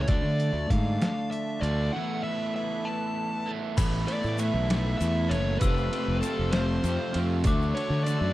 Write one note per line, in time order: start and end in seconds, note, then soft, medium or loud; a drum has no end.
0.00 0.10 E4 medium
0.00 0.12 E4 medium
0.00 0.09 C#5 medium
0.07 0.21 D2 medium
0.07 1.60 D3 medium
0.07 1.00 F3 medium
0.07 1.64 A3 medium
0.07 1.61 D4 loud
0.07 0.72 D5 medium
0.07 1.90 A5 medium
0.07 kick loud
0.07 closed hi-hat medium
0.12 1.00 E4 loud
0.22 0.50 D3 medium
0.40 closed hi-hat medium
0.53 0.67 D2 medium
0.70 0.97 G#2 medium
0.70 1.01 F5 medium
0.70 kick medium
0.70 closed hi-hat medium
1.00 1.93 D3 medium
1.00 1.92 F3 medium
1.00 1.96 A3 medium
1.00 1.96 E4 medium
1.00 1.31 F5 medium
1.00 snare loud
1.00 closed hi-hat medium
1.31 1.63 E5 medium
1.31 closed hi-hat medium
1.61 1.89 D2 medium
1.61 1.92 D3 medium
1.61 1.94 A3 medium
1.61 1.92 D4 medium
1.61 1.91 F4 medium
1.61 1.90 D5 medium
1.61 closed hi-hat medium
1.91 3.44 E3 medium
1.91 3.45 A3 loud
1.91 3.75 A4 medium
1.91 3.74 B4 medium
1.91 2.23 F#5 loud
1.91 3.74 B5 loud
1.96 3.46 B3 loud
1.96 3.45 E4 loud
2.23 2.52 E5 medium
2.56 2.87 E5 medium
2.85 3.77 E3 medium
2.85 3.76 A3 medium
2.85 3.76 B3 medium
2.85 3.75 E4 medium
2.85 3.50 A5 medium
3.46 3.76 E3 medium
3.46 3.76 A3 medium
3.46 3.76 B3 medium
3.46 3.75 E4 medium
3.75 4.04 A1 loud
3.75 4.05 A2 loud
3.75 4.05 E3 loud
3.75 4.07 A3 loud
3.75 4.07 B3 loud
3.75 4.07 E4 loud
3.75 5.59 A4 medium
3.75 4.11 A4 loud
3.75 5.58 B4 medium
3.75 5.59 E5 medium
3.75 5.59 B5 medium
3.75 5.57 B5 medium
3.75 kick loud
3.75 crash loud
3.75 ride medium
3.75 shaker loud
3.93 shaker soft
4.06 4.37 A2 medium
4.06 4.37 E3 medium
4.06 4.38 A3 medium
4.06 4.38 B3 loud
4.06 4.38 E4 loud
4.06 4.40 D5 medium
4.06 ride medium
4.11 4.42 A4 medium
4.23 4.50 A2 medium
4.23 shaker soft
4.38 4.69 A2 medium
4.38 4.69 E3 medium
4.38 4.70 A3 medium
4.38 4.71 B3 medium
4.38 4.71 E4 medium
4.38 4.97 E5 loud
4.38 ride medium
4.38 shaker loud
4.42 4.71 A4 medium
4.54 4.94 B1 medium
4.70 4.99 A2 medium
4.70 5.00 E3 medium
4.70 5.00 A3 medium
4.70 5.01 B3 medium
4.70 5.01 E4 medium
4.70 5.01 A4 medium
4.70 snare loud
4.70 ride medium
4.70 shaker soft
4.98 5.33 E2 loud
4.98 5.28 A2 medium
4.98 5.29 E3 medium
4.98 5.29 A3 medium
4.98 5.29 B3 medium
4.98 5.29 E4 loud
4.98 5.33 A4 loud
4.98 5.31 E5 loud
4.98 ride medium
4.98 shaker loud
5.29 5.57 F#1 medium
5.29 5.59 A2 medium
5.29 5.59 E3 medium
5.29 5.60 A3 medium
5.29 5.59 B3 medium
5.29 5.59 E4 medium
5.29 5.59 C#5 medium
5.29 ride medium
5.29 shaker soft
5.33 5.64 A4 medium
5.59 5.88 F1 medium
5.59 5.90 F2 loud
5.59 5.91 C3 loud
5.59 5.91 F3 medium
5.59 5.92 A3 loud
5.59 7.42 C4 medium
5.59 5.92 C4 loud
5.59 5.93 F4 loud
5.59 7.42 G4 medium
5.59 6.17 B4 medium
5.59 8.33 A5 medium
5.59 7.41 E6 loud
5.59 kick loud
5.59 ride medium
5.59 shaker loud
5.65 5.92 G4 loud
5.77 shaker soft
5.91 6.21 F2 medium
5.91 6.21 C3 medium
5.91 6.22 F3 medium
5.91 6.23 A3 medium
5.91 6.22 C4 medium
5.91 6.23 F4 medium
5.91 6.23 G4 medium
5.91 ride medium
6.08 6.21 F1 medium
6.21 6.50 F2 medium
6.21 6.50 C3 medium
6.21 6.51 F3 medium
6.21 6.52 A3 loud
6.21 6.52 C4 medium
6.21 6.52 F4 medium
6.21 6.53 G4 medium
6.21 6.53 A4 medium
6.21 ride medium
6.21 shaker loud
6.39 6.78 F1 medium
6.51 6.81 F2 medium
6.51 6.82 C3 medium
6.51 6.82 F3 medium
6.51 6.83 A3 medium
6.51 6.83 C4 medium
6.51 6.84 F4 medium
6.51 6.84 G4 medium
6.51 7.17 C5 medium
6.51 snare loud
6.51 ride medium
6.51 shaker soft
6.82 7.12 F2 medium
6.82 6.97 F2 loud
6.82 7.12 C3 medium
6.82 7.13 F3 medium
6.82 7.14 A3 medium
6.82 7.14 C4 medium
6.82 7.14 F4 medium
6.82 7.16 G4 loud
6.82 ride medium
6.82 shaker medium
7.13 7.43 F2 medium
7.13 7.45 F2 medium
7.13 7.43 C3 medium
7.13 7.43 F3 medium
7.13 7.43 A3 medium
7.13 7.44 C4 medium
7.13 7.44 F4 medium
7.13 7.44 G4 medium
7.13 ride medium
7.42 7.72 D2 loud
7.42 7.73 D3 loud
7.42 7.74 E3 loud
7.42 7.74 A3 loud
7.42 8.33 D4 medium
7.42 7.75 D4 loud
7.42 8.33 F#4 medium
7.42 7.76 F#4 loud
7.42 8.33 E5 medium
7.42 kick loud
7.42 ride loud
7.42 shaker medium
7.47 8.33 D6 medium
7.62 shaker soft
7.74 8.06 D3 medium
7.74 8.04 E3 medium
7.74 8.06 A3 medium
7.74 8.07 D4 medium
7.74 8.08 F#4 medium
7.74 8.04 C#5 medium
7.74 ride medium
7.90 8.17 D3 medium
8.04 8.33 D3 medium
8.04 8.33 E3 medium
8.04 8.33 A3 medium
8.04 8.33 D4 medium
8.04 8.33 D5 medium
8.04 ride medium
8.04 shaker medium
8.08 8.33 F#4 medium
8.21 8.33 F#2 medium